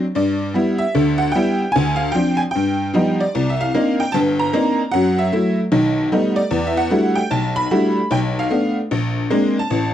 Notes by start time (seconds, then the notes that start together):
0.15 G2 D5
0.54 G3 B3 E4
0.78 E5
0.95 D2 D3
1.18 F#5
1.32 G3 B3 G5
1.36 E4
1.72 D2 G#5
1.96 F5
2.12 F3 C4 D4 G5
2.37 G#5
2.51 G5
2.55 G2
2.94 F3 G3 B3 D#4
3.20 D5
3.35 C2
3.50 E5
3.61 F5
3.74 A#3 C4 D4 D#4
4.00 G5
4.12 G1 G2 A5
4.39 A#5
4.53 A#3 C4 D4 D#4
4.91 F#2 F#3 F#5
5.18 E5
5.32 F#3 A3 E4
5.72 B1 D#3
6.12 G3 A3 B3 D#4
6.36 D5
6.51 E2
6.67 E5
6.77 F#5
6.91 G3 A3 D4 E4 F#4
7.15 G5
7.31 B1 A5
7.56 B5
7.71 G3 A3 D4 E4 F#4
8.11 B1 G5
8.39 F5
8.50 A3 B3 D4
8.91 A#1
9.30 G#3 A#3 C4 D4
9.59 A5
9.70 A1